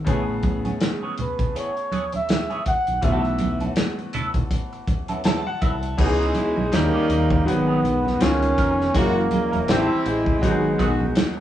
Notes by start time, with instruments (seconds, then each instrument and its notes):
0.05 fingered electric bass A1, grand piano C#3 A3 B3, clean electric guitar E3 B3 C#4 G#4, kick, closed hi-hat, low conga
0.09 grand piano G#4
0.29 muted clean electric guitar stroke
0.43 muted clean electric guitar stroke, kick, closed hi-hat, high conga
0.65 clean electric guitar E3 B3 C#4 G#4, closed hi-hat, high conga
0.81 muted clean electric guitar stroke, snare, closed hi-hat
1.03 clean electric guitar E3 B3 C#4 G#4
1.18 flugelhorn B4, muted clean electric guitar stroke, closed hi-hat, low conga
1.39 muted clean electric guitar stroke, kick, closed hi-hat, low conga
1.55 clean electric guitar E3 B3 C#4 G#4, flugelhorn C#5, closed hi-hat
1.76 muted clean electric guitar stroke, closed hi-hat
1.92 clean electric guitar E3 B3 C#4 G#4, closed hi-hat, muted conga, high conga
2.12 flugelhorn E5, muted clean electric guitar stroke, closed hi-hat, high conga
2.29 muted clean electric guitar stroke, snare, closed hi-hat, high conga
2.50 clean electric guitar E3 B3 C#4 G#4, closed hi-hat
2.66 flugelhorn F#5, muted fingered electric bass stroke, kick, closed hi-hat, muted conga
2.87 fingered electric bass B1, muted clean electric guitar stroke, closed hi-hat
3.01 fingered electric bass B1, grand piano E3 A3 B3 F4, clean electric guitar F#3 B3 E4 A4, flugelhorn E5, kick, closed hi-hat, muted conga, low conga
3.11 grand piano F#4
3.24 muted clean electric guitar stroke, closed hi-hat
3.39 muted clean electric guitar stroke, closed hi-hat, muted conga, high conga
3.60 clean electric guitar F#3 B3 E4 A4, closed hi-hat, high conga
3.76 muted clean electric guitar stroke, snare, closed hi-hat
3.98 muted clean electric guitar stroke, closed hi-hat
4.13 clean electric guitar F#3 B3 E4 A4, closed hi-hat, low conga
4.34 muted clean electric guitar stroke, kick, closed hi-hat, low conga
4.51 muted clean electric guitar stroke, kick, closed hi-hat, muted conga
4.73 muted clean electric guitar stroke, closed hi-hat
4.88 kick, closed hi-hat, muted conga, high conga
5.08 clean electric guitar F#3 B3 E4 A4, closed hi-hat, high conga
5.24 clean electric guitar F#3 B3 E4 A4, grand piano A5, snare, closed hi-hat, muted conga, high conga
5.46 grand piano F#5, muted clean electric guitar stroke
5.61 fingered electric bass C2, clean electric guitar F#3 B3 E4 A4, grand piano E5, kick, closed hi-hat
5.83 muted clean electric guitar stroke, closed hi-hat
5.97 fingered electric bass C#2, grand piano E3 B3 C#4 D#4 F#4, horn section E3 D#4 G#4, clean electric guitar E3 B3 D#4 G#4, flugelhorn G#3, kick, crash, muted conga, low conga
6.06 grand piano G#4
6.35 horn section B2 G#3 E4, closed hi-hat, high conga
6.57 fingered electric bass B1, muted clean electric guitar stroke, high conga
6.71 fingered electric bass D#2, horn section C#3 G3 D#4, grand piano D#3 G3 A#3 C#4 G4, flugelhorn A#3, muted clean electric guitar stroke, snare, closed hi-hat, muted conga
6.94 clean electric guitar D#3 A#3 C#4 G4, muted fingered electric bass stroke
7.09 fingered electric bass D#2, muted clean electric guitar stroke, closed hi-hat, muted conga
7.30 muted clean electric guitar stroke, kick, low conga
7.45 fingered electric bass G#1, grand piano D#3 F#3 G#3 B3 F#4, flugelhorn B3, muted clean electric guitar stroke, closed hi-hat, muted conga
7.68 clean electric guitar F#3 B3 D#4 G#4
7.82 fingered electric bass B1, muted clean electric guitar stroke, closed hi-hat, high conga
8.04 muted clean electric guitar stroke, snare, high conga
8.20 fingered electric bass C#2, grand piano D#3 A#3 B3 C#4 F4, flugelhorn C#4, snare, closed hi-hat, high conga
8.43 closed hi-hat
8.58 fingered electric bass F1, clean electric guitar F3 B3 D#4 A#4, kick, closed hi-hat
8.79 muted clean electric guitar stroke, snare
8.94 fingered electric bass F#1, horn section C#3 A#3 F#4, grand piano E3 G#3 A#3 C#4 F4, clean electric guitar G#3 C#4 E4 A#4, flugelhorn A#3, kick, closed hi-hat, low conga
9.03 grand piano F#4
9.16 muted clean electric guitar stroke
9.31 horn section A#2 G#3 C#4, muted clean electric guitar stroke, closed hi-hat, muted conga, high conga
9.52 fingered electric bass E1, clean electric guitar G#3 C#4 E4 A#4, closed hi-hat, high conga
9.67 fingered electric bass A1, horn section C3 C4 E4, grand piano E3 C4 G4, clean electric guitar G3 C4 E4 A4, flugelhorn C4, snare, closed hi-hat
9.90 muted fingered electric bass stroke
10.06 fingered electric bass A1, flugelhorn G#3, muted clean electric guitar stroke, closed hi-hat
10.26 muted clean electric guitar stroke, kick, low conga
10.41 fingered electric bass G#1, horn section D#3 B3 F#4, grand piano F#3 G#3 B3 D#4 G4, muted clean electric guitar stroke, kick, closed hi-hat, muted conga
10.51 grand piano G#4
10.78 fingered electric bass B1, horn section D#3 B3 F#4, clean electric guitar F#3 B3 D#4 G#4, kick, closed hi-hat, high conga
11.00 muted clean electric guitar stroke, high conga
11.15 muted clean electric guitar stroke, snare, closed hi-hat, high conga